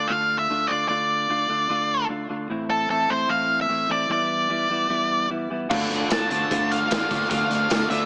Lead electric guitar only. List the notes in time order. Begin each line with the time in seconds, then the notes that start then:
Already playing: D5
0.08 F5
0.39 E5
0.67 D5
0.88 D5
2.70 A4
2.90 A4
3.10 C5
3.29 F5
3.61 E5
3.92 D5
4.12 D5
6.13 A5
6.30 A5
6.71 F5
7.30 F5
7.90 E5